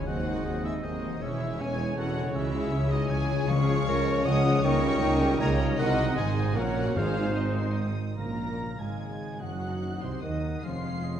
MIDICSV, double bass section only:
0, 0, Header, 1, 2, 480
1, 0, Start_track
1, 0, Key_signature, 4, "minor"
1, 0, Tempo, 382409
1, 85, Time_signature, 3, 2, 24, 8
1, 4391, Key_signature, -5, "major"
1, 8245, Tempo, 407332
1, 13700, End_track
2, 0, Start_track
2, 0, Title_t, "Double bass section"
2, 0, Program_c, 0, 48
2, 92, Note_on_c, 0, 39, 83
2, 515, Note_off_c, 0, 39, 0
2, 575, Note_on_c, 0, 39, 73
2, 997, Note_off_c, 0, 39, 0
2, 1052, Note_on_c, 0, 39, 74
2, 1477, Note_off_c, 0, 39, 0
2, 1531, Note_on_c, 0, 28, 85
2, 1953, Note_off_c, 0, 28, 0
2, 2010, Note_on_c, 0, 28, 84
2, 2431, Note_off_c, 0, 28, 0
2, 2485, Note_on_c, 0, 28, 79
2, 2899, Note_off_c, 0, 28, 0
2, 2953, Note_on_c, 0, 37, 90
2, 3366, Note_off_c, 0, 37, 0
2, 3421, Note_on_c, 0, 37, 97
2, 3840, Note_off_c, 0, 37, 0
2, 3911, Note_on_c, 0, 37, 91
2, 4340, Note_off_c, 0, 37, 0
2, 4382, Note_on_c, 0, 37, 107
2, 4813, Note_off_c, 0, 37, 0
2, 4874, Note_on_c, 0, 37, 115
2, 5294, Note_off_c, 0, 37, 0
2, 5342, Note_on_c, 0, 37, 105
2, 5769, Note_off_c, 0, 37, 0
2, 5825, Note_on_c, 0, 37, 108
2, 6248, Note_off_c, 0, 37, 0
2, 6300, Note_on_c, 0, 37, 122
2, 6729, Note_off_c, 0, 37, 0
2, 6793, Note_on_c, 0, 37, 111
2, 7215, Note_off_c, 0, 37, 0
2, 7272, Note_on_c, 0, 36, 103
2, 7719, Note_off_c, 0, 36, 0
2, 7768, Note_on_c, 0, 32, 92
2, 8251, Note_off_c, 0, 32, 0
2, 8256, Note_on_c, 0, 34, 90
2, 8718, Note_off_c, 0, 34, 0
2, 8733, Note_on_c, 0, 32, 83
2, 9886, Note_off_c, 0, 32, 0
2, 10147, Note_on_c, 0, 34, 67
2, 10832, Note_off_c, 0, 34, 0
2, 10873, Note_on_c, 0, 32, 53
2, 11588, Note_off_c, 0, 32, 0
2, 11592, Note_on_c, 0, 30, 64
2, 12319, Note_on_c, 0, 36, 58
2, 12321, Note_off_c, 0, 30, 0
2, 12413, Note_off_c, 0, 36, 0
2, 12567, Note_on_c, 0, 39, 64
2, 13037, Note_off_c, 0, 39, 0
2, 13045, Note_on_c, 0, 29, 65
2, 13700, Note_off_c, 0, 29, 0
2, 13700, End_track
0, 0, End_of_file